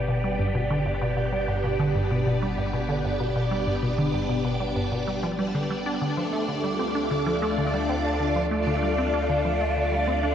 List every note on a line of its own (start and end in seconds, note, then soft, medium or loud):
0.00 5.98 G1 medium
0.00 6.02 B3 medium
0.00 10.35 D4 medium
0.00 7.69 G4 medium
0.00 10.35 D5 medium
0.08 0.14 B2 medium
0.24 0.33 G3 medium
0.39 0.49 G2 medium
0.55 0.60 B2 medium
0.70 0.80 D3 medium
0.86 0.92 G2 medium
1.01 1.11 B2 medium
1.17 1.23 B2 medium
1.33 1.42 G3 medium
1.48 1.58 G2 medium
1.64 1.70 B2 medium
1.79 1.89 D3 loud
1.95 2.01 G2 medium
2.11 2.21 B2 medium
2.27 2.32 B2 medium
2.42 2.52 G3 medium
2.58 2.68 G2 medium
2.73 2.79 B2 medium
2.89 2.99 D3 medium
3.05 3.10 G2 medium
3.20 3.30 B2 medium
3.36 3.42 B2 medium
3.51 3.61 G3 medium
3.67 3.77 G2 medium
3.83 3.89 B2 medium
3.98 4.08 D3 loud
4.14 4.20 G2 medium
4.30 4.39 B2 medium
4.45 4.51 B2 medium
4.61 4.71 G3 medium
4.76 4.86 G2 medium
4.92 4.98 B2 medium
5.08 5.14 G3 medium
5.23 5.33 F3 medium
5.39 5.49 G3 medium
5.55 5.64 D3 medium
5.70 5.85 G3 medium
5.86 5.92 D4 loud
6.01 10.35 D2 medium
6.01 6.11 D3 medium
6.01 10.35 A3 medium
6.17 6.23 F3 medium
6.33 6.43 A3 medium
6.48 6.54 D3 medium
6.64 6.74 G3 medium
6.64 10.35 F4 medium
6.80 6.85 C4 medium
6.95 7.05 D4 medium
7.11 7.21 D3 medium
7.26 7.32 F3 medium
7.42 7.52 A3 medium
7.58 7.64 D3 medium
7.73 7.83 G3 medium
7.89 7.95 C4 medium
8.04 8.14 D4 medium
8.20 8.30 D3 medium
8.36 8.42 F3 medium
8.51 8.61 A3 loud
8.67 8.73 D3 medium
8.83 8.92 G3 medium
8.98 9.04 C4 medium
9.14 9.24 D4 medium
9.29 9.39 D3 medium
9.45 9.51 F3 medium
9.61 9.70 A3 loud
9.76 9.82 D3 medium
9.92 10.02 G3 medium
10.08 10.13 C4 medium
10.23 10.33 D4 medium